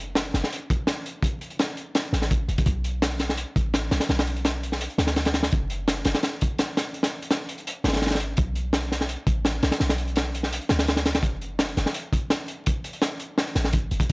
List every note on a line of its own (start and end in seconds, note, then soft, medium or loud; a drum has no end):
0.00 0.33 F#1 medium
0.15 snare loud
0.15 closed hi-hat medium
0.25 closed hi-hat soft
0.34 0.42 F#1 medium
0.34 snare medium
0.34 closed hi-hat medium
0.44 snare medium
0.52 closed hi-hat medium
0.70 kick loud
0.70 closed hi-hat medium
0.87 snare loud
0.87 closed hi-hat loud
1.06 closed hi-hat medium
1.23 kick loud
1.23 closed hi-hat medium
1.41 closed hi-hat medium
1.50 closed hi-hat soft
1.59 snare loud
1.59 closed hi-hat medium
1.77 closed hi-hat medium
1.95 snare loud
1.95 closed hi-hat medium
2.05 closed hi-hat soft
2.13 2.47 A1 medium
2.13 snare soft
2.13 closed hi-hat medium
2.22 snare soft
2.31 kick loud
2.31 closed hi-hat medium
2.48 2.57 F#1 medium
2.48 closed hi-hat medium
2.58 kick loud
2.58 closed hi-hat medium
2.66 3.45 B1 loud
2.66 kick loud
2.66 closed hi-hat medium
2.84 closed hi-hat medium
3.02 snare loud
3.02 closed hi-hat loud
3.11 closed hi-hat soft
3.19 snare soft
3.19 closed hi-hat medium
3.29 snare medium
3.37 closed hi-hat medium
3.56 3.90 A1 loud
3.56 kick loud
3.56 closed hi-hat medium
3.74 snare loud
3.74 closed hi-hat medium
3.91 3.99 B1 loud
3.91 snare loud
3.91 closed hi-hat medium
4.00 snare loud
4.00 closed hi-hat medium
4.09 4.88 B1 medium
4.09 snare loud
4.09 closed hi-hat medium
4.19 snare loud
4.19 closed hi-hat medium
4.27 closed hi-hat medium
4.36 closed hi-hat soft
4.45 snare loud
4.45 closed hi-hat loud
4.63 closed hi-hat medium
4.72 snare soft
4.81 closed hi-hat medium
4.90 closed hi-hat soft
4.98 5.50 D2 medium
4.98 snare loud
4.98 closed hi-hat medium
5.07 snare medium
5.07 closed hi-hat medium
5.16 snare loud
5.16 closed hi-hat medium
5.25 snare loud
5.25 closed hi-hat medium
5.34 snare loud
5.34 closed hi-hat medium
5.43 snare loud
5.43 closed hi-hat medium
5.52 6.04 F#1 medium
5.52 kick loud
5.52 closed hi-hat medium
5.70 closed hi-hat medium
5.88 snare loud
5.88 closed hi-hat loud
5.97 closed hi-hat soft
6.05 6.14 F#1 medium
6.05 snare loud
6.05 closed hi-hat medium
6.14 snare loud
6.14 closed hi-hat medium
6.23 snare loud
6.23 closed hi-hat medium
6.41 kick loud
6.41 closed hi-hat medium
6.59 snare loud
6.59 closed hi-hat medium
6.77 snare loud
6.77 closed hi-hat medium
6.94 closed hi-hat medium
7.03 snare loud
7.03 closed hi-hat medium
7.22 closed hi-hat medium
7.31 snare loud
7.31 closed hi-hat medium
7.49 closed hi-hat medium
7.58 closed hi-hat soft
7.67 closed hi-hat medium
7.84 8.36 G#1 medium
7.84 snare medium
7.84 closed hi-hat medium
7.88 snare loud
7.88 closed hi-hat medium
7.93 snare medium
7.93 closed hi-hat medium
7.96 snare medium
7.96 closed hi-hat medium
8.02 snare medium
8.02 closed hi-hat medium
8.06 snare medium
8.06 closed hi-hat medium
8.10 snare medium
8.10 closed hi-hat medium
8.15 snare medium
8.15 closed hi-hat medium
8.20 closed hi-hat medium
8.37 9.17 B1 loud
8.37 kick loud
8.37 closed hi-hat medium
8.55 closed hi-hat medium
8.73 snare loud
8.73 closed hi-hat medium
8.82 closed hi-hat soft
8.92 snare medium
8.92 closed hi-hat medium
9.01 snare medium
9.09 closed hi-hat medium
9.27 9.61 A1 loud
9.27 kick medium
9.27 closed hi-hat medium
9.45 snare loud
9.45 closed hi-hat loud
9.63 9.71 B1 loud
9.63 snare loud
9.63 closed hi-hat medium
9.71 snare medium
9.71 closed hi-hat medium
9.80 10.60 B1 loud
9.80 snare loud
9.80 closed hi-hat medium
9.89 snare loud
9.89 closed hi-hat medium
9.98 closed hi-hat medium
10.08 closed hi-hat soft
10.16 snare loud
10.16 closed hi-hat medium
10.35 closed hi-hat medium
10.43 snare medium
10.53 closed hi-hat medium
10.61 closed hi-hat soft
10.69 11.24 D2 medium
10.69 snare loud
10.69 closed hi-hat medium
10.79 snare loud
10.79 closed hi-hat medium
10.87 snare loud
10.87 closed hi-hat medium
10.96 snare loud
10.96 closed hi-hat medium
11.05 snare loud
11.05 closed hi-hat medium
11.15 snare loud
11.15 closed hi-hat medium
11.23 11.75 F#1 medium
11.23 kick loud
11.23 closed hi-hat medium
11.41 closed hi-hat medium
11.59 snare loud
11.59 closed hi-hat medium
11.68 closed hi-hat soft
11.77 11.85 F#1 medium
11.77 snare medium
11.77 closed hi-hat medium
11.86 snare medium
11.94 closed hi-hat medium
12.13 kick loud
12.13 closed hi-hat medium
12.30 snare loud
12.30 closed hi-hat loud
12.48 closed hi-hat medium
12.66 kick loud
12.66 closed hi-hat medium
12.84 closed hi-hat medium
12.93 closed hi-hat soft
13.02 snare loud
13.02 closed hi-hat medium
13.20 closed hi-hat medium
13.38 snare loud
13.38 closed hi-hat medium
13.47 closed hi-hat soft
13.55 13.90 A1 loud
13.55 snare medium
13.55 closed hi-hat medium
13.64 snare medium
13.73 kick loud
13.73 closed hi-hat medium
13.91 14.00 F#1 medium
13.91 closed hi-hat medium
14.00 kick loud
14.00 closed hi-hat medium